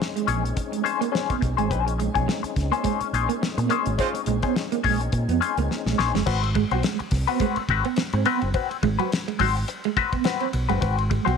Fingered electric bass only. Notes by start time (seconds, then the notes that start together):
0.28 A#1
1.42 B1
1.58 G#1
1.71 A#1
2.16 B1
2.43 muted fingered electric bass stroke
2.56 C#2
3.01 muted fingered electric bass stroke
3.13 A#1
3.58 A#2
3.87 G#1
4.27 A#1
4.84 A#1
5.13 A#2
5.28 F2
5.57 C#2
5.86 A#1
5.98 A#1
6.14 F#1
6.27 G#1
6.71 B1
7.00 muted fingered electric bass stroke
7.12 C2
7.57 muted fingered electric bass stroke
7.69 G#1
8.13 G#2
8.42 F#1
8.83 G#1
9.40 G#1
10.54 B1
10.69 F#1
10.82 G#1
11.27 B1